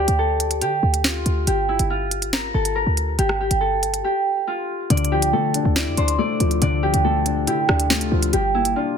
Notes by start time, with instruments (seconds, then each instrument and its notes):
Already playing: harp F4 G4 A4 C5 D5
0.08 808-style bass D2, closed hi-hat
0.19 harp A4
0.40 closed hi-hat
0.51 closed hi-hat
0.61 808-style bass D3, harp G4, closed hi-hat
0.83 808-style bass D2
0.94 closed hi-hat
1.04 harp F4, snare
1.26 808-style bass D2, closed hi-hat
1.47 808-style bass G1, harp G4, closed hi-hat
1.69 harp E4
1.79 808-style bass G1, closed hi-hat
1.90 harp F4
2.11 closed hi-hat
2.22 closed hi-hat
2.33 harp A#4, snare, closed hi-hat
2.54 808-style bass G1, harp A4
2.65 closed hi-hat
2.75 harp A#4
2.87 808-style bass D2
2.97 closed hi-hat
3.19 808-style bass G1, harp G4, closed hi-hat
3.29 cross-stick
3.41 harp G4
3.51 808-style bass G1, closed hi-hat
3.61 harp A4
3.83 closed hi-hat
3.94 closed hi-hat
4.04 harp G4
4.47 harp F4
4.90 808-style bass D2, felt piano D3, harp D5, closed hi-hat
4.97 closed hi-hat
5.05 closed hi-hat
5.12 felt piano F3, harp G4
5.22 closed hi-hat
5.33 808-style bass D3, felt piano A3, harp A4
5.54 felt piano D4, closed hi-hat
5.65 808-style bass D2
5.76 felt piano E4, harp D5, snare, closed hi-hat
5.87 808-style bass F2
5.97 808-style bass D2, felt piano D4, harp C5, closed hi-hat
6.08 closed hi-hat
6.19 felt piano A3, harp D5
6.40 808-style bass D2, felt piano F3, closed hi-hat
6.51 closed hi-hat
6.62 808-style bass D2, felt piano D3, harp D5, closed hi-hat
6.83 felt piano F3, harp G4
6.94 808-style bass D2, closed hi-hat
7.04 felt piano A3, harp A4
7.26 felt piano D4, closed hi-hat
7.47 808-style bass D3, felt piano E4, harp G4, closed hi-hat
7.69 808-style bass D2, felt piano D4, cross-stick
7.80 closed hi-hat
7.90 felt piano A3, harp F4, snare
8.01 closed hi-hat
8.12 808-style bass D2, felt piano F3
8.23 closed hi-hat
8.33 808-style bass G1, felt piano G3, harp G4, closed hi-hat
8.54 felt piano A#3, harp E4
8.65 closed hi-hat
8.76 felt piano D4, harp F4